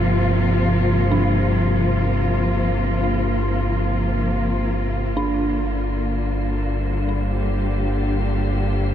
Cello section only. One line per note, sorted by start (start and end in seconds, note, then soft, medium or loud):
0.00 5.17 G2 medium
0.00 5.16 C3 medium
0.00 5.17 F3 medium
0.00 8.95 A#3 medium
0.00 8.95 F4 medium
5.18 8.95 D3 medium
6.29 8.95 G3 medium
7.19 8.95 G4 medium